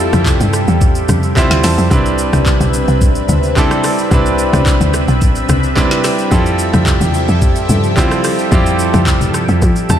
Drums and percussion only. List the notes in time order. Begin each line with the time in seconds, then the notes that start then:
0.13 cross-stick, high conga, shaker
0.26 kick, clap, shaker
0.40 high conga, shaker
0.53 cross-stick, shaker
0.68 shaker
0.81 kick, low conga, shaker
0.95 shaker
1.09 cross-stick, high conga, shaker
1.23 shaker
1.36 kick, clap, high conga, shaker
1.51 snare, shaker
1.64 cross-stick, snare, open hi-hat, shaker
1.78 shaker
1.91 kick, low conga, shaker
2.06 shaker
2.18 shaker
2.33 cross-stick, high conga, shaker
2.46 kick, clap, shaker
2.60 high conga, shaker
2.74 shaker
2.88 shaker
3.01 kick, low conga, shaker
3.15 shaker
3.29 high conga, shaker
3.43 shaker
3.57 kick, clap, high conga, shaker
3.71 cross-stick, shaker
3.84 cross-stick, open hi-hat, shaker
3.98 shaker
4.11 kick, low conga, shaker
4.26 shaker
4.39 shaker
4.53 cross-stick, high conga, shaker
4.66 kick, clap, shaker
4.81 high conga, shaker
4.94 cross-stick, shaker
5.08 shaker
5.21 kick, low conga, shaker
5.36 shaker
5.49 cross-stick, high conga, shaker
5.63 shaker
5.77 kick, clap, high conga, shaker
5.91 snare, shaker
6.04 cross-stick, snare, open hi-hat, shaker
6.19 shaker
6.31 kick, low conga, shaker
6.46 shaker
6.59 shaker
6.74 cross-stick, high conga, shaker
6.86 kick, clap, shaker
7.01 high conga, shaker
7.14 shaker
7.28 shaker
7.42 kick, low conga, shaker
7.56 shaker
7.69 high conga, shaker
7.84 shaker
7.97 kick, clap, high conga, shaker
8.11 cross-stick, shaker
8.24 cross-stick, open hi-hat, shaker
8.39 shaker
8.52 kick, low conga, shaker
8.66 shaker
8.79 shaker
8.94 cross-stick, high conga, shaker
9.07 kick, clap, shaker
9.21 high conga, shaker
9.34 cross-stick, shaker
9.49 shaker
9.62 kick, low conga, shaker
9.76 shaker
9.89 cross-stick, high conga, shaker